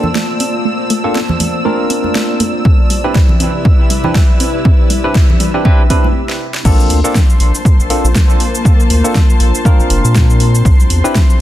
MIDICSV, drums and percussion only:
0, 0, Header, 1, 2, 480
1, 0, Start_track
1, 0, Tempo, 500000
1, 625, Time_signature, 4, 2, 24, 8
1, 10954, End_track
2, 0, Start_track
2, 0, Title_t, "Drums"
2, 33, Note_on_c, 9, 64, 87
2, 129, Note_off_c, 9, 64, 0
2, 147, Note_on_c, 9, 38, 123
2, 243, Note_off_c, 9, 38, 0
2, 385, Note_on_c, 9, 46, 93
2, 481, Note_off_c, 9, 46, 0
2, 865, Note_on_c, 9, 46, 112
2, 961, Note_off_c, 9, 46, 0
2, 1107, Note_on_c, 9, 38, 126
2, 1203, Note_off_c, 9, 38, 0
2, 1241, Note_on_c, 9, 64, 96
2, 1337, Note_off_c, 9, 64, 0
2, 1344, Note_on_c, 9, 64, 83
2, 1345, Note_on_c, 9, 46, 94
2, 1440, Note_off_c, 9, 64, 0
2, 1441, Note_off_c, 9, 46, 0
2, 1825, Note_on_c, 9, 46, 108
2, 1921, Note_off_c, 9, 46, 0
2, 1959, Note_on_c, 9, 63, 61
2, 2055, Note_off_c, 9, 63, 0
2, 2066, Note_on_c, 9, 38, 126
2, 2162, Note_off_c, 9, 38, 0
2, 2302, Note_on_c, 9, 63, 63
2, 2305, Note_on_c, 9, 46, 97
2, 2398, Note_off_c, 9, 63, 0
2, 2401, Note_off_c, 9, 46, 0
2, 2545, Note_on_c, 9, 36, 124
2, 2641, Note_off_c, 9, 36, 0
2, 2785, Note_on_c, 9, 46, 106
2, 2881, Note_off_c, 9, 46, 0
2, 3025, Note_on_c, 9, 36, 126
2, 3027, Note_on_c, 9, 38, 116
2, 3121, Note_off_c, 9, 36, 0
2, 3123, Note_off_c, 9, 38, 0
2, 3159, Note_on_c, 9, 64, 90
2, 3255, Note_off_c, 9, 64, 0
2, 3263, Note_on_c, 9, 64, 86
2, 3265, Note_on_c, 9, 46, 93
2, 3359, Note_off_c, 9, 64, 0
2, 3361, Note_off_c, 9, 46, 0
2, 3505, Note_on_c, 9, 36, 127
2, 3601, Note_off_c, 9, 36, 0
2, 3745, Note_on_c, 9, 46, 116
2, 3841, Note_off_c, 9, 46, 0
2, 3876, Note_on_c, 9, 64, 91
2, 3972, Note_off_c, 9, 64, 0
2, 3985, Note_on_c, 9, 36, 125
2, 3987, Note_on_c, 9, 38, 123
2, 4081, Note_off_c, 9, 36, 0
2, 4083, Note_off_c, 9, 38, 0
2, 4225, Note_on_c, 9, 46, 103
2, 4321, Note_off_c, 9, 46, 0
2, 4465, Note_on_c, 9, 36, 125
2, 4561, Note_off_c, 9, 36, 0
2, 4705, Note_on_c, 9, 46, 107
2, 4801, Note_off_c, 9, 46, 0
2, 4945, Note_on_c, 9, 36, 127
2, 4946, Note_on_c, 9, 38, 119
2, 5041, Note_off_c, 9, 36, 0
2, 5042, Note_off_c, 9, 38, 0
2, 5086, Note_on_c, 9, 64, 96
2, 5182, Note_off_c, 9, 64, 0
2, 5182, Note_on_c, 9, 64, 72
2, 5185, Note_on_c, 9, 46, 93
2, 5278, Note_off_c, 9, 64, 0
2, 5281, Note_off_c, 9, 46, 0
2, 5425, Note_on_c, 9, 36, 125
2, 5521, Note_off_c, 9, 36, 0
2, 5665, Note_on_c, 9, 36, 64
2, 5665, Note_on_c, 9, 46, 112
2, 5761, Note_off_c, 9, 36, 0
2, 5761, Note_off_c, 9, 46, 0
2, 5802, Note_on_c, 9, 63, 75
2, 5898, Note_off_c, 9, 63, 0
2, 6041, Note_on_c, 9, 38, 72
2, 6137, Note_off_c, 9, 38, 0
2, 6281, Note_on_c, 9, 38, 102
2, 6377, Note_off_c, 9, 38, 0
2, 6385, Note_on_c, 9, 36, 114
2, 6385, Note_on_c, 9, 49, 104
2, 6391, Note_on_c, 9, 82, 57
2, 6481, Note_off_c, 9, 36, 0
2, 6481, Note_off_c, 9, 49, 0
2, 6487, Note_off_c, 9, 82, 0
2, 6528, Note_on_c, 9, 82, 36
2, 6624, Note_off_c, 9, 82, 0
2, 6625, Note_on_c, 9, 46, 111
2, 6721, Note_off_c, 9, 46, 0
2, 6768, Note_on_c, 9, 82, 71
2, 6864, Note_off_c, 9, 82, 0
2, 6865, Note_on_c, 9, 36, 119
2, 6867, Note_on_c, 9, 38, 127
2, 6872, Note_on_c, 9, 82, 61
2, 6961, Note_off_c, 9, 36, 0
2, 6963, Note_off_c, 9, 38, 0
2, 6968, Note_off_c, 9, 82, 0
2, 7007, Note_on_c, 9, 82, 35
2, 7103, Note_off_c, 9, 82, 0
2, 7105, Note_on_c, 9, 46, 89
2, 7201, Note_off_c, 9, 46, 0
2, 7247, Note_on_c, 9, 82, 72
2, 7343, Note_off_c, 9, 82, 0
2, 7345, Note_on_c, 9, 36, 125
2, 7352, Note_on_c, 9, 82, 57
2, 7441, Note_off_c, 9, 36, 0
2, 7448, Note_off_c, 9, 82, 0
2, 7488, Note_on_c, 9, 82, 36
2, 7584, Note_off_c, 9, 82, 0
2, 7585, Note_on_c, 9, 46, 104
2, 7681, Note_off_c, 9, 46, 0
2, 7728, Note_on_c, 9, 82, 72
2, 7824, Note_off_c, 9, 82, 0
2, 7825, Note_on_c, 9, 36, 122
2, 7828, Note_on_c, 9, 38, 127
2, 7833, Note_on_c, 9, 82, 59
2, 7921, Note_off_c, 9, 36, 0
2, 7924, Note_off_c, 9, 38, 0
2, 7929, Note_off_c, 9, 82, 0
2, 7967, Note_on_c, 9, 82, 35
2, 8063, Note_off_c, 9, 82, 0
2, 8065, Note_on_c, 9, 46, 96
2, 8161, Note_off_c, 9, 46, 0
2, 8207, Note_on_c, 9, 82, 71
2, 8303, Note_off_c, 9, 82, 0
2, 8305, Note_on_c, 9, 36, 123
2, 8312, Note_on_c, 9, 82, 57
2, 8401, Note_off_c, 9, 36, 0
2, 8408, Note_off_c, 9, 82, 0
2, 8448, Note_on_c, 9, 82, 34
2, 8544, Note_off_c, 9, 82, 0
2, 8545, Note_on_c, 9, 46, 111
2, 8641, Note_off_c, 9, 46, 0
2, 8688, Note_on_c, 9, 82, 70
2, 8784, Note_off_c, 9, 82, 0
2, 8785, Note_on_c, 9, 36, 127
2, 8787, Note_on_c, 9, 38, 123
2, 8792, Note_on_c, 9, 82, 57
2, 8881, Note_off_c, 9, 36, 0
2, 8883, Note_off_c, 9, 38, 0
2, 8888, Note_off_c, 9, 82, 0
2, 8927, Note_on_c, 9, 82, 35
2, 9023, Note_off_c, 9, 82, 0
2, 9025, Note_on_c, 9, 46, 98
2, 9121, Note_off_c, 9, 46, 0
2, 9167, Note_on_c, 9, 82, 70
2, 9263, Note_off_c, 9, 82, 0
2, 9265, Note_on_c, 9, 36, 127
2, 9272, Note_on_c, 9, 82, 56
2, 9361, Note_off_c, 9, 36, 0
2, 9368, Note_off_c, 9, 82, 0
2, 9408, Note_on_c, 9, 82, 34
2, 9504, Note_off_c, 9, 82, 0
2, 9506, Note_on_c, 9, 46, 115
2, 9602, Note_off_c, 9, 46, 0
2, 9648, Note_on_c, 9, 82, 70
2, 9744, Note_off_c, 9, 82, 0
2, 9745, Note_on_c, 9, 36, 127
2, 9748, Note_on_c, 9, 38, 127
2, 9753, Note_on_c, 9, 82, 60
2, 9841, Note_off_c, 9, 36, 0
2, 9844, Note_off_c, 9, 38, 0
2, 9849, Note_off_c, 9, 82, 0
2, 9888, Note_on_c, 9, 82, 33
2, 9984, Note_off_c, 9, 82, 0
2, 9985, Note_on_c, 9, 46, 99
2, 10081, Note_off_c, 9, 46, 0
2, 10128, Note_on_c, 9, 82, 68
2, 10224, Note_off_c, 9, 82, 0
2, 10225, Note_on_c, 9, 36, 125
2, 10232, Note_on_c, 9, 82, 55
2, 10321, Note_off_c, 9, 36, 0
2, 10328, Note_off_c, 9, 82, 0
2, 10368, Note_on_c, 9, 82, 34
2, 10464, Note_off_c, 9, 82, 0
2, 10466, Note_on_c, 9, 46, 112
2, 10562, Note_off_c, 9, 46, 0
2, 10608, Note_on_c, 9, 82, 66
2, 10704, Note_off_c, 9, 82, 0
2, 10705, Note_on_c, 9, 36, 121
2, 10708, Note_on_c, 9, 38, 126
2, 10712, Note_on_c, 9, 82, 55
2, 10801, Note_off_c, 9, 36, 0
2, 10804, Note_off_c, 9, 38, 0
2, 10808, Note_off_c, 9, 82, 0
2, 10848, Note_on_c, 9, 82, 33
2, 10944, Note_off_c, 9, 82, 0
2, 10954, End_track
0, 0, End_of_file